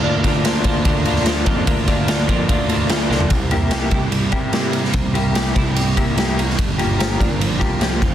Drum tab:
RD |--x-x-x-x-x-x-x-|x-x-x-x-x-x-x---|x-x-x-x-x-x-x-x-|x-x-x-x-x-x-x-x-|
SD |--o-o------oo---|--o-o-------o-o-|----o-------o--o|----o-------o--o|
FT |----------------|---------------o|----------------|----------------|
BD |--o---o-o-----o-|o-o---o-o-------|o-----o---o-----|o-----o---o-----|

RD |x-x-x-x-x-x-x-x-|
SD |----o-------o---|
FT |----------------|
BD |o-----o---o---o-|